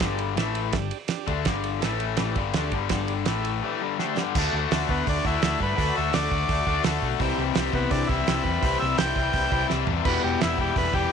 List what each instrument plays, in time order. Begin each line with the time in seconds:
0.00 picked electric bass G1, overdriven electric guitar G2 D3 G3, transistor combo organ D4 G4 D5, kick, snare, ride
0.19 ride
0.37 picked electric bass A1, overdriven electric guitar A2 E3 A3, transistor combo organ E4 A4 E5, snare, ride
0.55 ride
0.73 picked electric bass G1, overdriven electric guitar G2 D3, transistor combo organ D4 G4 D5, kick, snare, ride
0.91 ride
1.08 transistor combo organ D4 G4 D5, snare, ride
1.27 picked electric bass D2, overdriven electric guitar D3 A3 D4, kick, ride
1.45 picked electric bass G1, overdriven electric guitar G2 D3 G3, transistor combo organ D4 G4 D5, kick, snare, ride
1.64 ride
1.79 picked electric bass A1, overdriven electric guitar A2, transistor combo organ E4 A4 E5, snare, ride
1.84 overdriven electric guitar E3 A3
2.00 ride
2.17 picked electric bass A1, overdriven electric guitar A2 E3 A3, transistor combo organ D4 G4 D5, snare, ride
2.35 picked electric bass G1, overdriven electric guitar G2 D3 G3, kick, ride
2.54 picked electric bass D2, overdriven electric guitar D3 A3 D4, transistor combo organ D4 G4 D5, snare, ride
2.72 picked electric bass G1, overdriven electric guitar G2 D3 G3, kick, ride
2.89 picked electric bass G1, overdriven electric guitar G2 D3 G3, transistor combo organ D4 G4 D5, kick, snare, ride
3.08 ride
3.25 picked electric bass A1, overdriven electric guitar A2 E3 A3, transistor combo organ E4 A4 E5, snare, ride
3.45 ride
3.62 overdriven electric guitar A2 E3 A3, transistor combo organ D4 G4 D5
3.81 overdriven electric guitar G2 D3 G3, transistor combo organ A5
3.99 overdriven electric guitar D3 A3 D4, transistor combo organ D4 G4 C5 G5, snare
4.17 overdriven electric guitar G2 D3 G3, snare
4.35 picked electric bass D2, overdriven electric guitar D3 A3 D4 F#4, transistor combo organ F#4 A4 D5, kick, crash
4.53 picked electric bass D2, overdriven electric guitar D4 F#4
4.57 overdriven electric guitar A3
4.71 picked electric bass D2, overdriven electric guitar D3 A3 D4 F#4, transistor combo organ F#4 A4 D5, snare, open hi-hat
4.89 picked electric bass D2, overdriven electric guitar A3 D4 F#4, transistor combo organ B3, kick
5.05 picked electric bass D2, transistor combo organ F#4 A4 D5, kick, open hi-hat
5.09 transistor combo organ D4
5.23 picked electric bass D2, overdriven electric guitar D4 F#4, transistor combo organ E4 F#4 A4 D5, kick
5.27 overdriven electric guitar A3
5.42 picked electric bass D2, overdriven electric guitar D3 A3 D4 F#4, transistor combo organ F#4 A4 D5, snare, open hi-hat
5.60 picked electric bass G2, transistor combo organ B4, kick
5.75 picked electric bass D2, overdriven electric guitar D3 A3 D4 F#4, transistor combo organ F#4 A4 D5, kick, open hi-hat
5.95 picked electric bass D2, overdriven electric guitar A3 D4 F#4, transistor combo organ E5
6.13 picked electric bass D2, overdriven electric guitar D3 A3 D4 F#4, transistor combo organ F#4 A4 D5, snare, open hi-hat
6.31 picked electric bass D2, overdriven electric guitar A3 D4 F#4, kick
6.48 picked electric bass D2, transistor combo organ F#4 A4 D5, kick, open hi-hat
6.66 picked electric bass D2, overdriven electric guitar A3 D4 F#4, transistor combo organ F#4 A4 D5, kick
6.83 picked electric bass D2, overdriven electric guitar D3 A3 D4 F#4, transistor combo organ F#4 A4 D5, snare, open hi-hat
7.02 picked electric bass B1, kick
7.19 picked electric bass C2, overdriven electric guitar C3 E3 G3 C4 E4, transistor combo organ E4 G4 C5, kick, open hi-hat
7.38 picked electric bass C2, overdriven electric guitar G3 C4 E4
7.55 picked electric bass C2, overdriven electric guitar E3 G3 C4, transistor combo organ E4 G4 C5, snare, open hi-hat
7.59 overdriven electric guitar E4
7.73 picked electric bass C2, overdriven electric guitar G3 C4 E4, transistor combo organ B3, kick
7.91 picked electric bass C2, transistor combo organ D4 E4 G4 C5, kick, open hi-hat
8.07 picked electric bass C2, transistor combo organ E4 G4, overdriven electric guitar E4, kick
8.11 overdriven electric guitar G3 C4, transistor combo organ C5
8.27 picked electric bass C2, overdriven electric guitar C3 E3 G3 C4 E4, transistor combo organ E4 G4 C5, snare, open hi-hat
8.43 picked electric bass E2, transistor combo organ B4, kick
8.61 picked electric bass C2, overdriven electric guitar C3 E3 G3, transistor combo organ E4 G4 C5, kick, open hi-hat
8.66 overdriven electric guitar C4 E4
8.80 picked electric bass C2, overdriven electric guitar E4, transistor combo organ E5
8.84 overdriven electric guitar G3 C4
8.97 picked electric bass C2, overdriven electric guitar E3 G3 C4 E4, transistor combo organ E4 G4 C5 G5, snare, open hi-hat
9.16 picked electric bass C2, overdriven electric guitar C4 E4, kick
9.21 overdriven electric guitar G3
9.33 picked electric bass C2, transistor combo organ E4 G4 C5, kick, open hi-hat
9.50 picked electric bass C2, overdriven electric guitar C4 E4, transistor combo organ E4 G4 C5, kick
9.55 overdriven electric guitar G3
9.68 picked electric bass C2, overdriven electric guitar C3 E3, transistor combo organ E4 G4 B4 E5, snare
9.73 overdriven electric guitar G3 C4 E4
9.87 picked electric bass E2, transistor combo organ A5, floor tom
10.04 picked electric bass E1, overdriven electric guitar E2 B2 E3 G3, transistor combo organ E4 G4 B4, kick, crash
10.08 overdriven electric guitar B3 E4
10.23 picked electric bass E1, overdriven electric guitar E3 G3 B3 E4, transistor combo organ G4
10.38 overdriven electric guitar E3 G3, transistor combo organ E4 G4 B4, snare, open hi-hat
10.43 picked electric bass E1, overdriven electric guitar B3 E4
10.58 picked electric bass E1, overdriven electric guitar E3 G3 B3 E4, transistor combo organ G4, kick
10.75 picked electric bass E1, transistor combo organ E4 G4 A4 B4, kick, open hi-hat
10.92 picked electric bass E1, overdriven electric guitar G3 B3 E4, transistor combo organ E4 G4 D5, kick
10.96 overdriven electric guitar E3